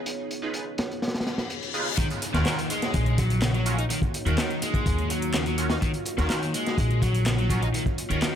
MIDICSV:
0, 0, Header, 1, 8, 480
1, 0, Start_track
1, 0, Key_signature, -6, "minor"
1, 0, Tempo, 480000
1, 61, Time_signature, 4, 2, 24, 8
1, 8353, End_track
2, 0, Start_track
2, 0, Title_t, "Ambient pad"
2, 0, Program_c, 0, 92
2, 0, Note_on_c, 0, 59, 79
2, 0, Note_on_c, 0, 63, 74
2, 0, Note_on_c, 0, 65, 73
2, 0, Note_on_c, 0, 68, 74
2, 0, Note_on_c, 0, 73, 90
2, 1939, Note_off_c, 0, 73, 0
2, 1941, Note_off_c, 0, 59, 0
2, 1941, Note_off_c, 0, 68, 0
2, 1944, Note_off_c, 0, 63, 0
2, 1944, Note_off_c, 0, 65, 0
2, 1979, Note_on_c, 0, 66, 78
2, 1979, Note_on_c, 0, 73, 96
2, 1980, Note_on_c, 0, 58, 85
2, 1980, Note_on_c, 0, 63, 77
2, 1982, Note_on_c, 0, 65, 79
2, 8353, Note_off_c, 0, 58, 0
2, 8353, Note_off_c, 0, 63, 0
2, 8353, Note_off_c, 0, 65, 0
2, 8353, Note_off_c, 0, 66, 0
2, 8353, Note_off_c, 0, 73, 0
2, 8353, End_track
3, 0, Start_track
3, 0, Title_t, "Synth stab"
3, 0, Program_c, 1, 62
3, 420, Note_on_c, 1, 71, 88
3, 421, Note_on_c, 1, 49, 80
3, 421, Note_on_c, 1, 63, 71
3, 421, Note_on_c, 1, 65, 70
3, 421, Note_on_c, 1, 68, 70
3, 638, Note_off_c, 1, 49, 0
3, 638, Note_off_c, 1, 63, 0
3, 638, Note_off_c, 1, 65, 0
3, 638, Note_off_c, 1, 68, 0
3, 638, Note_off_c, 1, 71, 0
3, 1739, Note_on_c, 1, 63, 79
3, 1740, Note_on_c, 1, 65, 80
3, 1740, Note_on_c, 1, 68, 84
3, 1740, Note_on_c, 1, 71, 95
3, 1741, Note_on_c, 1, 49, 90
3, 1877, Note_off_c, 1, 63, 0
3, 1877, Note_off_c, 1, 65, 0
3, 1877, Note_off_c, 1, 68, 0
3, 1877, Note_off_c, 1, 71, 0
3, 1878, Note_off_c, 1, 49, 0
3, 2342, Note_on_c, 1, 65, 71
3, 2342, Note_on_c, 1, 66, 74
3, 2342, Note_on_c, 1, 70, 90
3, 2343, Note_on_c, 1, 61, 80
3, 2558, Note_off_c, 1, 65, 0
3, 2558, Note_off_c, 1, 66, 0
3, 2558, Note_off_c, 1, 70, 0
3, 2559, Note_off_c, 1, 61, 0
3, 3658, Note_on_c, 1, 66, 82
3, 3659, Note_on_c, 1, 61, 91
3, 3659, Note_on_c, 1, 65, 85
3, 3659, Note_on_c, 1, 70, 102
3, 3797, Note_off_c, 1, 61, 0
3, 3797, Note_off_c, 1, 65, 0
3, 3797, Note_off_c, 1, 66, 0
3, 3797, Note_off_c, 1, 70, 0
3, 4261, Note_on_c, 1, 61, 79
3, 4261, Note_on_c, 1, 66, 75
3, 4261, Note_on_c, 1, 70, 90
3, 4262, Note_on_c, 1, 65, 75
3, 4478, Note_off_c, 1, 61, 0
3, 4478, Note_off_c, 1, 65, 0
3, 4478, Note_off_c, 1, 66, 0
3, 4478, Note_off_c, 1, 70, 0
3, 5580, Note_on_c, 1, 65, 88
3, 5581, Note_on_c, 1, 61, 96
3, 5581, Note_on_c, 1, 66, 87
3, 5581, Note_on_c, 1, 70, 99
3, 5718, Note_off_c, 1, 61, 0
3, 5718, Note_off_c, 1, 65, 0
3, 5718, Note_off_c, 1, 66, 0
3, 5718, Note_off_c, 1, 70, 0
3, 6182, Note_on_c, 1, 66, 73
3, 6183, Note_on_c, 1, 65, 74
3, 6183, Note_on_c, 1, 70, 91
3, 6184, Note_on_c, 1, 61, 83
3, 6399, Note_off_c, 1, 61, 0
3, 6399, Note_off_c, 1, 65, 0
3, 6399, Note_off_c, 1, 66, 0
3, 6399, Note_off_c, 1, 70, 0
3, 7500, Note_on_c, 1, 65, 83
3, 7500, Note_on_c, 1, 66, 85
3, 7501, Note_on_c, 1, 61, 95
3, 7501, Note_on_c, 1, 70, 102
3, 7637, Note_off_c, 1, 65, 0
3, 7638, Note_off_c, 1, 61, 0
3, 7638, Note_off_c, 1, 66, 0
3, 7638, Note_off_c, 1, 70, 0
3, 8103, Note_on_c, 1, 65, 74
3, 8104, Note_on_c, 1, 61, 79
3, 8104, Note_on_c, 1, 66, 71
3, 8104, Note_on_c, 1, 70, 90
3, 8319, Note_off_c, 1, 61, 0
3, 8319, Note_off_c, 1, 65, 0
3, 8319, Note_off_c, 1, 66, 0
3, 8320, Note_off_c, 1, 70, 0
3, 8353, End_track
4, 0, Start_track
4, 0, Title_t, "Overdriven electric guitar"
4, 0, Program_c, 2, 29
4, 1980, Note_on_c, 2, 51, 80
4, 2068, Note_off_c, 2, 51, 0
4, 2344, Note_on_c, 2, 51, 101
4, 2690, Note_off_c, 2, 51, 0
4, 2701, Note_on_c, 2, 56, 104
4, 3169, Note_off_c, 2, 56, 0
4, 3181, Note_on_c, 2, 54, 77
4, 3409, Note_off_c, 2, 54, 0
4, 3421, Note_on_c, 2, 49, 81
4, 3508, Note_off_c, 2, 49, 0
4, 3542, Note_on_c, 2, 54, 78
4, 3771, Note_off_c, 2, 54, 0
4, 3783, Note_on_c, 2, 63, 98
4, 3834, Note_off_c, 2, 63, 0
4, 3906, Note_on_c, 2, 51, 81
4, 3990, Note_off_c, 2, 51, 0
4, 4266, Note_on_c, 2, 51, 99
4, 4611, Note_off_c, 2, 51, 0
4, 4623, Note_on_c, 2, 56, 101
4, 5090, Note_off_c, 2, 56, 0
4, 5100, Note_on_c, 2, 54, 79
4, 5329, Note_off_c, 2, 54, 0
4, 5341, Note_on_c, 2, 49, 81
4, 5428, Note_off_c, 2, 49, 0
4, 5466, Note_on_c, 2, 54, 78
4, 5692, Note_off_c, 2, 54, 0
4, 5704, Note_on_c, 2, 63, 99
4, 5754, Note_off_c, 2, 63, 0
4, 5824, Note_on_c, 2, 51, 83
4, 5909, Note_off_c, 2, 51, 0
4, 6183, Note_on_c, 2, 51, 104
4, 6529, Note_off_c, 2, 51, 0
4, 6542, Note_on_c, 2, 56, 106
4, 7010, Note_off_c, 2, 56, 0
4, 7021, Note_on_c, 2, 54, 78
4, 7249, Note_off_c, 2, 54, 0
4, 7259, Note_on_c, 2, 49, 84
4, 7347, Note_off_c, 2, 49, 0
4, 7378, Note_on_c, 2, 54, 77
4, 7609, Note_off_c, 2, 54, 0
4, 7618, Note_on_c, 2, 63, 100
4, 7671, Note_off_c, 2, 63, 0
4, 7738, Note_on_c, 2, 51, 82
4, 7827, Note_off_c, 2, 51, 0
4, 8100, Note_on_c, 2, 51, 100
4, 8353, Note_off_c, 2, 51, 0
4, 8353, End_track
5, 0, Start_track
5, 0, Title_t, "Upright bass"
5, 0, Program_c, 3, 32
5, 2341, Note_on_c, 3, 39, 97
5, 2420, Note_off_c, 3, 39, 0
5, 2942, Note_on_c, 3, 34, 103
5, 3837, Note_off_c, 3, 34, 0
5, 4258, Note_on_c, 3, 39, 102
5, 4338, Note_off_c, 3, 39, 0
5, 4858, Note_on_c, 3, 39, 91
5, 5755, Note_off_c, 3, 39, 0
5, 6182, Note_on_c, 3, 39, 99
5, 6260, Note_off_c, 3, 39, 0
5, 6778, Note_on_c, 3, 34, 109
5, 7675, Note_off_c, 3, 34, 0
5, 8101, Note_on_c, 3, 39, 95
5, 8180, Note_off_c, 3, 39, 0
5, 8353, End_track
6, 0, Start_track
6, 0, Title_t, "Downlifter"
6, 0, Program_c, 4, 103
6, 1982, Note_on_c, 4, 60, 75
6, 5822, Note_off_c, 4, 60, 0
6, 8353, End_track
7, 0, Start_track
7, 0, Title_t, "Reverse cymbal"
7, 0, Program_c, 5, 119
7, 1022, Note_on_c, 5, 60, 76
7, 1982, Note_off_c, 5, 60, 0
7, 8353, End_track
8, 0, Start_track
8, 0, Title_t, "Drums"
8, 61, Note_on_c, 9, 42, 85
8, 161, Note_off_c, 9, 42, 0
8, 308, Note_on_c, 9, 42, 58
8, 408, Note_off_c, 9, 42, 0
8, 537, Note_on_c, 9, 42, 78
8, 637, Note_off_c, 9, 42, 0
8, 780, Note_on_c, 9, 42, 82
8, 789, Note_on_c, 9, 38, 105
8, 880, Note_off_c, 9, 42, 0
8, 889, Note_off_c, 9, 38, 0
8, 913, Note_on_c, 9, 42, 40
8, 1013, Note_off_c, 9, 42, 0
8, 1023, Note_on_c, 9, 38, 73
8, 1026, Note_on_c, 9, 42, 71
8, 1077, Note_off_c, 9, 38, 0
8, 1077, Note_on_c, 9, 38, 88
8, 1082, Note_off_c, 9, 42, 0
8, 1082, Note_on_c, 9, 42, 63
8, 1144, Note_off_c, 9, 38, 0
8, 1144, Note_on_c, 9, 38, 84
8, 1146, Note_off_c, 9, 42, 0
8, 1146, Note_on_c, 9, 42, 65
8, 1205, Note_off_c, 9, 38, 0
8, 1205, Note_on_c, 9, 38, 84
8, 1209, Note_off_c, 9, 42, 0
8, 1209, Note_on_c, 9, 42, 67
8, 1266, Note_off_c, 9, 38, 0
8, 1266, Note_on_c, 9, 38, 99
8, 1267, Note_off_c, 9, 42, 0
8, 1267, Note_on_c, 9, 42, 68
8, 1366, Note_off_c, 9, 38, 0
8, 1367, Note_off_c, 9, 42, 0
8, 1380, Note_on_c, 9, 38, 94
8, 1384, Note_on_c, 9, 42, 74
8, 1480, Note_off_c, 9, 38, 0
8, 1484, Note_off_c, 9, 42, 0
8, 1499, Note_on_c, 9, 42, 86
8, 1599, Note_off_c, 9, 42, 0
8, 1626, Note_on_c, 9, 42, 39
8, 1726, Note_off_c, 9, 42, 0
8, 1742, Note_on_c, 9, 42, 68
8, 1842, Note_off_c, 9, 42, 0
8, 1978, Note_on_c, 9, 36, 112
8, 1982, Note_on_c, 9, 42, 45
8, 1988, Note_off_c, 9, 42, 0
8, 1988, Note_on_c, 9, 42, 94
8, 2078, Note_off_c, 9, 36, 0
8, 2088, Note_off_c, 9, 42, 0
8, 2105, Note_on_c, 9, 42, 23
8, 2110, Note_off_c, 9, 42, 0
8, 2110, Note_on_c, 9, 42, 44
8, 2210, Note_off_c, 9, 42, 0
8, 2221, Note_on_c, 9, 42, 75
8, 2224, Note_off_c, 9, 42, 0
8, 2224, Note_on_c, 9, 42, 73
8, 2324, Note_off_c, 9, 42, 0
8, 2345, Note_on_c, 9, 42, 32
8, 2346, Note_on_c, 9, 38, 53
8, 2445, Note_off_c, 9, 42, 0
8, 2446, Note_off_c, 9, 38, 0
8, 2457, Note_on_c, 9, 38, 122
8, 2464, Note_on_c, 9, 39, 105
8, 2464, Note_on_c, 9, 42, 44
8, 2468, Note_off_c, 9, 42, 0
8, 2468, Note_on_c, 9, 42, 87
8, 2557, Note_off_c, 9, 38, 0
8, 2564, Note_off_c, 9, 39, 0
8, 2568, Note_off_c, 9, 42, 0
8, 2586, Note_on_c, 9, 42, 22
8, 2587, Note_off_c, 9, 42, 0
8, 2587, Note_on_c, 9, 42, 48
8, 2687, Note_off_c, 9, 42, 0
8, 2701, Note_on_c, 9, 42, 78
8, 2703, Note_off_c, 9, 42, 0
8, 2703, Note_on_c, 9, 42, 77
8, 2803, Note_off_c, 9, 42, 0
8, 2823, Note_on_c, 9, 42, 34
8, 2826, Note_on_c, 9, 38, 50
8, 2923, Note_off_c, 9, 42, 0
8, 2926, Note_off_c, 9, 38, 0
8, 2937, Note_on_c, 9, 42, 89
8, 2941, Note_off_c, 9, 42, 0
8, 2941, Note_on_c, 9, 42, 43
8, 2943, Note_on_c, 9, 36, 110
8, 3041, Note_off_c, 9, 42, 0
8, 3043, Note_off_c, 9, 36, 0
8, 3062, Note_on_c, 9, 42, 22
8, 3162, Note_off_c, 9, 42, 0
8, 3181, Note_on_c, 9, 42, 80
8, 3182, Note_off_c, 9, 42, 0
8, 3182, Note_on_c, 9, 36, 90
8, 3182, Note_on_c, 9, 42, 70
8, 3282, Note_off_c, 9, 36, 0
8, 3282, Note_off_c, 9, 42, 0
8, 3304, Note_on_c, 9, 42, 33
8, 3311, Note_off_c, 9, 42, 0
8, 3311, Note_on_c, 9, 42, 44
8, 3411, Note_off_c, 9, 42, 0
8, 3419, Note_on_c, 9, 38, 127
8, 3422, Note_on_c, 9, 39, 112
8, 3422, Note_on_c, 9, 42, 47
8, 3424, Note_off_c, 9, 42, 0
8, 3424, Note_on_c, 9, 42, 88
8, 3519, Note_off_c, 9, 38, 0
8, 3522, Note_off_c, 9, 39, 0
8, 3524, Note_off_c, 9, 42, 0
8, 3545, Note_on_c, 9, 42, 21
8, 3645, Note_off_c, 9, 42, 0
8, 3657, Note_on_c, 9, 42, 63
8, 3660, Note_off_c, 9, 42, 0
8, 3660, Note_on_c, 9, 42, 78
8, 3760, Note_off_c, 9, 42, 0
8, 3785, Note_on_c, 9, 42, 33
8, 3885, Note_off_c, 9, 42, 0
8, 3902, Note_on_c, 9, 42, 45
8, 3904, Note_off_c, 9, 42, 0
8, 3904, Note_on_c, 9, 42, 93
8, 4004, Note_off_c, 9, 42, 0
8, 4018, Note_on_c, 9, 36, 101
8, 4027, Note_on_c, 9, 42, 23
8, 4118, Note_off_c, 9, 36, 0
8, 4127, Note_off_c, 9, 42, 0
8, 4142, Note_on_c, 9, 42, 74
8, 4145, Note_off_c, 9, 42, 0
8, 4145, Note_on_c, 9, 42, 75
8, 4245, Note_off_c, 9, 42, 0
8, 4265, Note_on_c, 9, 42, 34
8, 4365, Note_off_c, 9, 42, 0
8, 4379, Note_on_c, 9, 38, 118
8, 4381, Note_on_c, 9, 42, 81
8, 4384, Note_off_c, 9, 42, 0
8, 4384, Note_on_c, 9, 39, 111
8, 4384, Note_on_c, 9, 42, 46
8, 4479, Note_off_c, 9, 38, 0
8, 4484, Note_off_c, 9, 39, 0
8, 4484, Note_off_c, 9, 42, 0
8, 4505, Note_on_c, 9, 42, 22
8, 4605, Note_off_c, 9, 42, 0
8, 4621, Note_on_c, 9, 42, 77
8, 4721, Note_off_c, 9, 42, 0
8, 4739, Note_on_c, 9, 36, 105
8, 4743, Note_on_c, 9, 42, 34
8, 4839, Note_off_c, 9, 36, 0
8, 4843, Note_off_c, 9, 42, 0
8, 4860, Note_on_c, 9, 36, 112
8, 4862, Note_on_c, 9, 42, 47
8, 4867, Note_off_c, 9, 42, 0
8, 4867, Note_on_c, 9, 42, 87
8, 4959, Note_off_c, 9, 36, 0
8, 4967, Note_off_c, 9, 42, 0
8, 4985, Note_on_c, 9, 42, 22
8, 5085, Note_off_c, 9, 42, 0
8, 5101, Note_on_c, 9, 42, 81
8, 5105, Note_off_c, 9, 42, 0
8, 5105, Note_on_c, 9, 42, 75
8, 5205, Note_off_c, 9, 42, 0
8, 5223, Note_on_c, 9, 42, 33
8, 5323, Note_off_c, 9, 42, 0
8, 5340, Note_on_c, 9, 39, 112
8, 5340, Note_on_c, 9, 42, 46
8, 5342, Note_on_c, 9, 38, 106
8, 5440, Note_off_c, 9, 39, 0
8, 5440, Note_off_c, 9, 42, 0
8, 5442, Note_off_c, 9, 38, 0
8, 5460, Note_on_c, 9, 42, 22
8, 5461, Note_off_c, 9, 42, 0
8, 5461, Note_on_c, 9, 42, 39
8, 5561, Note_off_c, 9, 42, 0
8, 5580, Note_on_c, 9, 42, 80
8, 5586, Note_off_c, 9, 42, 0
8, 5586, Note_on_c, 9, 42, 61
8, 5686, Note_off_c, 9, 42, 0
8, 5696, Note_on_c, 9, 38, 107
8, 5698, Note_on_c, 9, 42, 76
8, 5704, Note_off_c, 9, 42, 0
8, 5704, Note_on_c, 9, 42, 32
8, 5796, Note_off_c, 9, 38, 0
8, 5804, Note_off_c, 9, 42, 0
8, 5821, Note_on_c, 9, 42, 44
8, 5822, Note_on_c, 9, 36, 107
8, 5824, Note_off_c, 9, 42, 0
8, 5824, Note_on_c, 9, 42, 83
8, 5922, Note_off_c, 9, 36, 0
8, 5924, Note_off_c, 9, 42, 0
8, 5936, Note_on_c, 9, 42, 46
8, 5944, Note_off_c, 9, 42, 0
8, 5944, Note_on_c, 9, 42, 23
8, 6044, Note_off_c, 9, 42, 0
8, 6055, Note_on_c, 9, 42, 71
8, 6063, Note_off_c, 9, 42, 0
8, 6063, Note_on_c, 9, 42, 75
8, 6163, Note_off_c, 9, 42, 0
8, 6179, Note_on_c, 9, 38, 51
8, 6185, Note_on_c, 9, 42, 33
8, 6279, Note_off_c, 9, 38, 0
8, 6285, Note_off_c, 9, 42, 0
8, 6298, Note_on_c, 9, 38, 110
8, 6303, Note_on_c, 9, 39, 111
8, 6303, Note_on_c, 9, 42, 45
8, 6306, Note_off_c, 9, 42, 0
8, 6306, Note_on_c, 9, 42, 94
8, 6398, Note_off_c, 9, 38, 0
8, 6403, Note_off_c, 9, 39, 0
8, 6406, Note_off_c, 9, 42, 0
8, 6426, Note_on_c, 9, 42, 21
8, 6427, Note_off_c, 9, 42, 0
8, 6427, Note_on_c, 9, 42, 46
8, 6527, Note_off_c, 9, 42, 0
8, 6541, Note_on_c, 9, 42, 68
8, 6543, Note_off_c, 9, 42, 0
8, 6543, Note_on_c, 9, 42, 77
8, 6643, Note_off_c, 9, 42, 0
8, 6665, Note_on_c, 9, 42, 31
8, 6672, Note_on_c, 9, 38, 49
8, 6765, Note_off_c, 9, 42, 0
8, 6772, Note_off_c, 9, 38, 0
8, 6778, Note_on_c, 9, 36, 110
8, 6783, Note_on_c, 9, 42, 45
8, 6789, Note_off_c, 9, 42, 0
8, 6789, Note_on_c, 9, 42, 88
8, 6878, Note_off_c, 9, 36, 0
8, 6889, Note_off_c, 9, 42, 0
8, 6905, Note_on_c, 9, 42, 23
8, 7005, Note_off_c, 9, 42, 0
8, 7019, Note_on_c, 9, 36, 96
8, 7023, Note_on_c, 9, 42, 75
8, 7026, Note_off_c, 9, 42, 0
8, 7026, Note_on_c, 9, 42, 70
8, 7119, Note_off_c, 9, 36, 0
8, 7126, Note_off_c, 9, 42, 0
8, 7145, Note_on_c, 9, 42, 32
8, 7146, Note_off_c, 9, 42, 0
8, 7146, Note_on_c, 9, 42, 45
8, 7246, Note_off_c, 9, 42, 0
8, 7256, Note_on_c, 9, 42, 85
8, 7264, Note_off_c, 9, 42, 0
8, 7264, Note_on_c, 9, 38, 115
8, 7264, Note_on_c, 9, 39, 116
8, 7264, Note_on_c, 9, 42, 45
8, 7364, Note_off_c, 9, 38, 0
8, 7364, Note_off_c, 9, 39, 0
8, 7364, Note_off_c, 9, 42, 0
8, 7386, Note_on_c, 9, 42, 21
8, 7486, Note_off_c, 9, 42, 0
8, 7497, Note_on_c, 9, 36, 93
8, 7501, Note_on_c, 9, 42, 75
8, 7503, Note_off_c, 9, 42, 0
8, 7503, Note_on_c, 9, 42, 80
8, 7597, Note_off_c, 9, 36, 0
8, 7603, Note_off_c, 9, 42, 0
8, 7625, Note_on_c, 9, 42, 33
8, 7725, Note_off_c, 9, 42, 0
8, 7742, Note_on_c, 9, 42, 43
8, 7746, Note_off_c, 9, 42, 0
8, 7746, Note_on_c, 9, 42, 91
8, 7846, Note_off_c, 9, 42, 0
8, 7860, Note_on_c, 9, 36, 97
8, 7865, Note_on_c, 9, 42, 21
8, 7960, Note_off_c, 9, 36, 0
8, 7965, Note_off_c, 9, 42, 0
8, 7981, Note_on_c, 9, 42, 68
8, 7982, Note_off_c, 9, 42, 0
8, 7982, Note_on_c, 9, 42, 74
8, 8082, Note_off_c, 9, 42, 0
8, 8106, Note_on_c, 9, 42, 31
8, 8206, Note_off_c, 9, 42, 0
8, 8222, Note_on_c, 9, 42, 80
8, 8223, Note_on_c, 9, 38, 123
8, 8224, Note_off_c, 9, 42, 0
8, 8224, Note_on_c, 9, 39, 109
8, 8224, Note_on_c, 9, 42, 42
8, 8323, Note_off_c, 9, 38, 0
8, 8324, Note_off_c, 9, 39, 0
8, 8324, Note_off_c, 9, 42, 0
8, 8353, End_track
0, 0, End_of_file